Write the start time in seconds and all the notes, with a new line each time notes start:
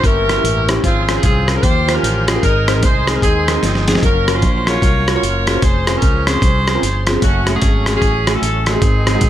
Already playing: A#3
0.04 G1 G2 E3 C#4 E4 G4 A#4, kick, closed hi-hat
0.29 C#4 E4 G4 A#4, cross-stick, closed hi-hat
0.37 C#4 E4 G4 A#4
0.44 A1, closed hi-hat
0.69 C#4 E4 G4 C5, cross-stick, closed hi-hat
0.76 C#4 E4 G4 C#5
0.83 G#1 G#2 F3 C4 C#4 F4 G#4 C5, kick, closed hi-hat
1.09 C#4 F4 G#4 C5, cross-stick, closed hi-hat
1.17 C#4 F4 G#4 C5
1.23 C2 C4 F4 G#4, kick, closed hi-hat
1.48 C#4 F4 G#4 A#4, cross-stick, closed hi-hat
1.56 C#4 F4 G#4 A#4 C5
1.63 D#2 D#3 F4 G4 C5, kick, closed hi-hat
1.88 C#4 F4 G4 C5, cross-stick, closed hi-hat
1.95 C#4 F4 G4 A#4 C5
2.03 A1, closed hi-hat
2.28 C#4 F4 G4 G#4 D#5, cross-stick, closed hi-hat
2.35 C#4 F4 G4 A#4
2.43 G#1 G#2 D#3 G#3 D#4 G#4 A#4, kick, closed hi-hat
2.68 C4 D#4 G#4 C5, cross-stick, closed hi-hat
2.75 C4 D#4 G#4 A#4
2.83 C2 D#4 G#4 C5, kick, closed hi-hat
3.07 C4 D#4 G#4 C5, cross-stick, closed hi-hat
3.15 C4 D#4 G#4 A#4 C5
3.22 D#2 C4 D#4 G#4, kick, closed hi-hat
3.48 C4 D#4 G#4 A#4, cross-stick, closed hi-hat
3.55 C4 D#4 G#4 A#4
3.63 G1, snare, closed hi-hat
3.75 snare
3.88 C4 D#4 G#4 D#5, snare, closed hi-hat
3.95 C4 D#4 G#4 D#5, snare
4.02 F#1 F#3 A#3 C#4 F4 A#4, kick, closed hi-hat
4.28 C#4 F4 F#4 A#4, cross-stick, closed hi-hat
4.35 C#4 F4 F#4 A#4 C5
4.42 A#1, kick, closed hi-hat
4.67 C#4 F4 F#4 G#4 A#4 C#5, cross-stick, closed hi-hat
4.75 C#4 F4 F#4 A#4
4.82 C2, kick, closed hi-hat
5.08 C#4 F4 F#4 A#4, cross-stick, closed hi-hat
5.15 C#4 F4 F#4 A#4 C#5
5.23 F#1, closed hi-hat
5.47 C#4 F4 F#4 G#4, cross-stick, closed hi-hat
5.55 C#4 F4 F#4 C5
5.62 F1 F3 G#4 C5, kick, closed hi-hat
5.87 C4 C#4 F4 G#4, cross-stick, closed hi-hat
5.95 C4 C#4 F4 A#4
6.02 C#2, kick, closed hi-hat
6.27 C4 C#4 F4 G#4 C5, cross-stick, closed hi-hat
6.35 C4 C#4 F4 G#4
6.42 C2, kick, closed hi-hat
6.67 C4 C#4 F4 G#4, cross-stick, closed hi-hat
6.75 C4 C#4 F4 A#4
6.83 G1, closed hi-hat
7.07 C4 C#4 F4 G#4, cross-stick, closed hi-hat
7.16 C4 C#4 F4 G#4
7.22 F#1 F#3 A3 C#4 F#4, kick, closed hi-hat
7.47 A3 C#4 F#4 G#4, cross-stick, closed hi-hat
7.56 A3 C#4 F#4 G#4
7.62 G#1, kick, closed hi-hat
7.86 A3 C#4 F#4 G#4, cross-stick, closed hi-hat
7.96 A3 C#4 F#4 G#4
8.02 A1, kick, closed hi-hat
8.27 A3 C#4 F#4 G#4, cross-stick, closed hi-hat
8.35 A3 C#4 F#4 A4
8.42 A1, closed hi-hat
8.66 A3 C4 C#4 D#4 F#4 G#4 A4, cross-stick, closed hi-hat
8.75 A3 C#4 F#4 G#4
8.82 G#1 G#2 D#3 G#3 C4, kick, closed hi-hat
9.07 G#3 C4 D#4 G#4, cross-stick, closed hi-hat
9.15 G#3 C4 D#4 F#4
9.21 A#1, kick, closed hi-hat